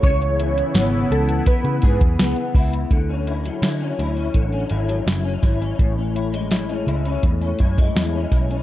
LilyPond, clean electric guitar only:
\new Staff \with { instrumentName = "Clean electric guitar" } { \time 4/4 \key d \lydian \tempo 4 = 83 cis8 e'8 b4 b8 gis'8 b8 e'8 | d16 cis'16 e'16 fis16 e'16 cis'16 e'16 cis'16 d16 cis'16 e'16 fis16 e'16 cis'16 e'16 cis'16 | a,16 cis'16 e'16 gis16 e'16 cis'16 e'16 cis'16 a,16 cis'16 e'16 gis16 e'16 cis'16 e'16 cis'16 | }